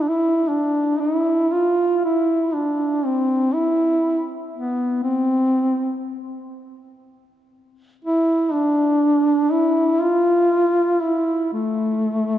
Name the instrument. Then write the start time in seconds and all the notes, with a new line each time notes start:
duduk
0.01 D4
0.09 E4
0.48 D4
1.00 E4
1.52 F4
2.04 E4
2.54 D4
3.05 C4
3.54 E4
4.54 B3
5.03 C4
8.05 E4
8.52 D4
9.51 E4
10.01 F4
11.02 E4
11.53 A3